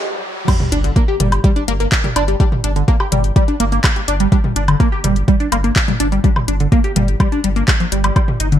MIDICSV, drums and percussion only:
0, 0, Header, 1, 2, 480
1, 0, Start_track
1, 0, Key_signature, -2, "minor"
1, 0, Tempo, 480000
1, 481, Time_signature, 4, 2, 24, 8
1, 8593, End_track
2, 0, Start_track
2, 0, Title_t, "Drums"
2, 480, Note_on_c, 9, 36, 117
2, 481, Note_on_c, 9, 42, 48
2, 481, Note_on_c, 9, 49, 103
2, 481, Note_on_c, 9, 77, 49
2, 580, Note_off_c, 9, 36, 0
2, 581, Note_off_c, 9, 42, 0
2, 581, Note_off_c, 9, 49, 0
2, 581, Note_off_c, 9, 77, 0
2, 601, Note_on_c, 9, 45, 80
2, 701, Note_off_c, 9, 45, 0
2, 721, Note_on_c, 9, 42, 104
2, 821, Note_off_c, 9, 42, 0
2, 842, Note_on_c, 9, 42, 36
2, 942, Note_off_c, 9, 42, 0
2, 960, Note_on_c, 9, 36, 121
2, 961, Note_on_c, 9, 42, 48
2, 1060, Note_off_c, 9, 36, 0
2, 1061, Note_off_c, 9, 42, 0
2, 1200, Note_on_c, 9, 42, 114
2, 1200, Note_on_c, 9, 45, 82
2, 1300, Note_off_c, 9, 42, 0
2, 1300, Note_off_c, 9, 45, 0
2, 1321, Note_on_c, 9, 42, 36
2, 1321, Note_on_c, 9, 77, 50
2, 1421, Note_off_c, 9, 42, 0
2, 1421, Note_off_c, 9, 77, 0
2, 1440, Note_on_c, 9, 36, 127
2, 1441, Note_on_c, 9, 42, 46
2, 1540, Note_off_c, 9, 36, 0
2, 1541, Note_off_c, 9, 42, 0
2, 1562, Note_on_c, 9, 42, 32
2, 1662, Note_off_c, 9, 42, 0
2, 1681, Note_on_c, 9, 42, 105
2, 1781, Note_off_c, 9, 42, 0
2, 1802, Note_on_c, 9, 42, 35
2, 1902, Note_off_c, 9, 42, 0
2, 1920, Note_on_c, 9, 36, 119
2, 1921, Note_on_c, 9, 39, 125
2, 1921, Note_on_c, 9, 42, 46
2, 2020, Note_off_c, 9, 36, 0
2, 2021, Note_off_c, 9, 39, 0
2, 2021, Note_off_c, 9, 42, 0
2, 2041, Note_on_c, 9, 42, 33
2, 2041, Note_on_c, 9, 45, 88
2, 2141, Note_off_c, 9, 42, 0
2, 2141, Note_off_c, 9, 45, 0
2, 2160, Note_on_c, 9, 42, 109
2, 2160, Note_on_c, 9, 77, 52
2, 2260, Note_off_c, 9, 42, 0
2, 2260, Note_off_c, 9, 77, 0
2, 2281, Note_on_c, 9, 42, 35
2, 2381, Note_off_c, 9, 42, 0
2, 2400, Note_on_c, 9, 36, 125
2, 2400, Note_on_c, 9, 42, 45
2, 2500, Note_off_c, 9, 36, 0
2, 2500, Note_off_c, 9, 42, 0
2, 2521, Note_on_c, 9, 45, 75
2, 2621, Note_off_c, 9, 45, 0
2, 2640, Note_on_c, 9, 42, 108
2, 2740, Note_off_c, 9, 42, 0
2, 2761, Note_on_c, 9, 42, 36
2, 2861, Note_off_c, 9, 42, 0
2, 2880, Note_on_c, 9, 36, 124
2, 2880, Note_on_c, 9, 42, 47
2, 2980, Note_off_c, 9, 36, 0
2, 2980, Note_off_c, 9, 42, 0
2, 3000, Note_on_c, 9, 77, 52
2, 3100, Note_off_c, 9, 77, 0
2, 3120, Note_on_c, 9, 42, 118
2, 3120, Note_on_c, 9, 45, 80
2, 3220, Note_off_c, 9, 42, 0
2, 3220, Note_off_c, 9, 45, 0
2, 3240, Note_on_c, 9, 42, 35
2, 3340, Note_off_c, 9, 42, 0
2, 3360, Note_on_c, 9, 36, 127
2, 3360, Note_on_c, 9, 42, 46
2, 3460, Note_off_c, 9, 36, 0
2, 3460, Note_off_c, 9, 42, 0
2, 3481, Note_on_c, 9, 42, 31
2, 3581, Note_off_c, 9, 42, 0
2, 3600, Note_on_c, 9, 42, 105
2, 3700, Note_off_c, 9, 42, 0
2, 3721, Note_on_c, 9, 42, 33
2, 3821, Note_off_c, 9, 42, 0
2, 3840, Note_on_c, 9, 36, 123
2, 3841, Note_on_c, 9, 39, 124
2, 3841, Note_on_c, 9, 42, 46
2, 3841, Note_on_c, 9, 77, 52
2, 3940, Note_off_c, 9, 36, 0
2, 3941, Note_off_c, 9, 39, 0
2, 3941, Note_off_c, 9, 42, 0
2, 3941, Note_off_c, 9, 77, 0
2, 3961, Note_on_c, 9, 42, 31
2, 4061, Note_off_c, 9, 42, 0
2, 4081, Note_on_c, 9, 42, 116
2, 4181, Note_off_c, 9, 42, 0
2, 4201, Note_on_c, 9, 42, 64
2, 4301, Note_off_c, 9, 42, 0
2, 4320, Note_on_c, 9, 36, 124
2, 4320, Note_on_c, 9, 42, 44
2, 4420, Note_off_c, 9, 36, 0
2, 4420, Note_off_c, 9, 42, 0
2, 4441, Note_on_c, 9, 45, 75
2, 4541, Note_off_c, 9, 45, 0
2, 4561, Note_on_c, 9, 42, 113
2, 4661, Note_off_c, 9, 42, 0
2, 4681, Note_on_c, 9, 42, 35
2, 4681, Note_on_c, 9, 77, 56
2, 4781, Note_off_c, 9, 42, 0
2, 4781, Note_off_c, 9, 77, 0
2, 4800, Note_on_c, 9, 36, 127
2, 4801, Note_on_c, 9, 42, 44
2, 4900, Note_off_c, 9, 36, 0
2, 4901, Note_off_c, 9, 42, 0
2, 5041, Note_on_c, 9, 42, 115
2, 5041, Note_on_c, 9, 45, 75
2, 5141, Note_off_c, 9, 42, 0
2, 5141, Note_off_c, 9, 45, 0
2, 5161, Note_on_c, 9, 42, 34
2, 5261, Note_off_c, 9, 42, 0
2, 5280, Note_on_c, 9, 36, 127
2, 5281, Note_on_c, 9, 42, 44
2, 5380, Note_off_c, 9, 36, 0
2, 5381, Note_off_c, 9, 42, 0
2, 5401, Note_on_c, 9, 42, 29
2, 5501, Note_off_c, 9, 42, 0
2, 5521, Note_on_c, 9, 42, 113
2, 5521, Note_on_c, 9, 77, 50
2, 5621, Note_off_c, 9, 42, 0
2, 5621, Note_off_c, 9, 77, 0
2, 5641, Note_on_c, 9, 42, 31
2, 5741, Note_off_c, 9, 42, 0
2, 5760, Note_on_c, 9, 36, 125
2, 5761, Note_on_c, 9, 39, 125
2, 5761, Note_on_c, 9, 42, 44
2, 5860, Note_off_c, 9, 36, 0
2, 5861, Note_off_c, 9, 39, 0
2, 5861, Note_off_c, 9, 42, 0
2, 5882, Note_on_c, 9, 42, 30
2, 5882, Note_on_c, 9, 45, 84
2, 5982, Note_off_c, 9, 42, 0
2, 5982, Note_off_c, 9, 45, 0
2, 6001, Note_on_c, 9, 42, 116
2, 6101, Note_off_c, 9, 42, 0
2, 6121, Note_on_c, 9, 42, 33
2, 6221, Note_off_c, 9, 42, 0
2, 6240, Note_on_c, 9, 36, 122
2, 6241, Note_on_c, 9, 42, 42
2, 6340, Note_off_c, 9, 36, 0
2, 6341, Note_off_c, 9, 42, 0
2, 6362, Note_on_c, 9, 45, 78
2, 6362, Note_on_c, 9, 77, 54
2, 6462, Note_off_c, 9, 45, 0
2, 6462, Note_off_c, 9, 77, 0
2, 6481, Note_on_c, 9, 42, 112
2, 6581, Note_off_c, 9, 42, 0
2, 6602, Note_on_c, 9, 42, 34
2, 6701, Note_off_c, 9, 42, 0
2, 6720, Note_on_c, 9, 36, 127
2, 6720, Note_on_c, 9, 42, 44
2, 6820, Note_off_c, 9, 36, 0
2, 6820, Note_off_c, 9, 42, 0
2, 6841, Note_on_c, 9, 42, 31
2, 6941, Note_off_c, 9, 42, 0
2, 6961, Note_on_c, 9, 42, 110
2, 6961, Note_on_c, 9, 45, 78
2, 7061, Note_off_c, 9, 42, 0
2, 7061, Note_off_c, 9, 45, 0
2, 7082, Note_on_c, 9, 42, 33
2, 7182, Note_off_c, 9, 42, 0
2, 7200, Note_on_c, 9, 36, 126
2, 7201, Note_on_c, 9, 42, 44
2, 7201, Note_on_c, 9, 77, 55
2, 7300, Note_off_c, 9, 36, 0
2, 7301, Note_off_c, 9, 42, 0
2, 7301, Note_off_c, 9, 77, 0
2, 7322, Note_on_c, 9, 42, 30
2, 7422, Note_off_c, 9, 42, 0
2, 7441, Note_on_c, 9, 42, 110
2, 7541, Note_off_c, 9, 42, 0
2, 7562, Note_on_c, 9, 42, 32
2, 7661, Note_off_c, 9, 42, 0
2, 7680, Note_on_c, 9, 36, 124
2, 7681, Note_on_c, 9, 39, 118
2, 7681, Note_on_c, 9, 42, 44
2, 7780, Note_off_c, 9, 36, 0
2, 7781, Note_off_c, 9, 39, 0
2, 7781, Note_off_c, 9, 42, 0
2, 7801, Note_on_c, 9, 42, 29
2, 7901, Note_off_c, 9, 42, 0
2, 7920, Note_on_c, 9, 42, 118
2, 8021, Note_off_c, 9, 42, 0
2, 8041, Note_on_c, 9, 42, 64
2, 8041, Note_on_c, 9, 77, 54
2, 8141, Note_off_c, 9, 42, 0
2, 8141, Note_off_c, 9, 77, 0
2, 8160, Note_on_c, 9, 36, 116
2, 8161, Note_on_c, 9, 42, 43
2, 8161, Note_on_c, 9, 77, 54
2, 8260, Note_off_c, 9, 36, 0
2, 8261, Note_off_c, 9, 42, 0
2, 8261, Note_off_c, 9, 77, 0
2, 8281, Note_on_c, 9, 45, 82
2, 8381, Note_off_c, 9, 45, 0
2, 8400, Note_on_c, 9, 42, 110
2, 8500, Note_off_c, 9, 42, 0
2, 8521, Note_on_c, 9, 42, 33
2, 8593, Note_off_c, 9, 42, 0
2, 8593, End_track
0, 0, End_of_file